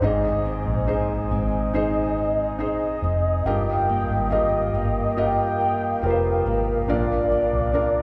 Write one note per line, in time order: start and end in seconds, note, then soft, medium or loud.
0.00 0.62 G#1 loud
0.00 3.45 G#2 medium
0.00 1.27 G#2 medium
0.00 0.45 C4 medium
0.00 0.11 D4 medium
0.00 0.84 D#4 medium
0.00 0.11 G4 medium
0.00 0.84 G#4 medium
0.00 3.41 C5 medium
0.00 0.84 C5 medium
0.00 0.85 D#5 medium
0.00 3.42 G#5 medium
0.00 6.64 D#6 medium
0.05 0.89 D#5 loud
0.45 1.30 C4 medium
0.66 1.27 A#1 medium
0.87 1.69 D#4 medium
0.87 1.69 G#4 medium
0.87 3.54 G#4 medium
0.87 1.69 C5 medium
0.87 1.70 D#5 medium
1.31 2.60 G#1 medium
1.31 2.16 C4 medium
1.31 2.56 D#5 loud
1.74 2.55 D#4 medium
1.74 2.60 D#4 medium
1.74 2.56 G#4 medium
1.74 2.56 C5 medium
1.74 2.56 D#5 medium
2.17 3.03 C4 soft
2.58 3.00 F1 medium
2.58 3.40 D#4 medium
2.58 5.17 D#4 medium
2.58 3.41 G#4 medium
2.58 3.41 C5 medium
2.58 3.47 D#5 loud
2.58 3.41 D#5 medium
3.02 3.42 F1 medium
3.02 3.55 C4 medium
3.45 4.06 G1 loud
3.45 6.88 G2 medium
3.45 4.71 G2 medium
3.45 4.27 F4 medium
3.45 4.27 G4 medium
3.45 4.28 A#4 medium
3.45 8.02 A#4 medium
3.45 4.28 D#5 medium
3.45 8.02 F5 medium
3.45 4.31 G5 loud
3.45 6.86 G5 medium
3.89 4.74 A#3 medium
4.09 4.70 G#1 medium
4.30 5.12 F4 medium
4.30 5.13 G4 medium
4.30 6.97 G4 medium
4.30 5.13 A#4 medium
4.30 5.13 D#5 medium
4.30 5.20 D#5 loud
4.74 5.99 G1 medium
4.74 5.60 A#3 medium
5.17 5.98 F4 medium
5.17 6.03 F4 medium
5.17 5.98 G4 medium
5.17 5.99 A#4 medium
5.17 5.99 D#5 medium
5.17 6.08 G5 loud
5.61 6.46 A#3 medium
6.02 6.43 F1 medium
6.02 6.83 F4 medium
6.02 6.97 F4 medium
6.02 6.84 G4 medium
6.02 6.84 A#4 medium
6.02 6.10 B4 medium
6.06 6.93 A#4 loud
6.06 6.88 C5 medium
6.46 6.85 G#1 medium
6.46 6.97 A#3 medium
6.88 7.53 A#1 loud
6.88 8.02 A#2 medium
6.88 7.70 D4 medium
6.88 7.70 F4 medium
6.88 7.70 A#4 medium
6.88 8.02 D5 medium
6.88 7.70 D5 medium
6.88 8.02 D5 loud
6.88 8.02 D6 medium
7.32 8.02 A#3 medium
7.53 8.02 C2 medium
7.73 8.02 D4 medium
7.73 8.02 F4 medium
7.73 8.02 A#4 medium
7.73 8.02 F5 medium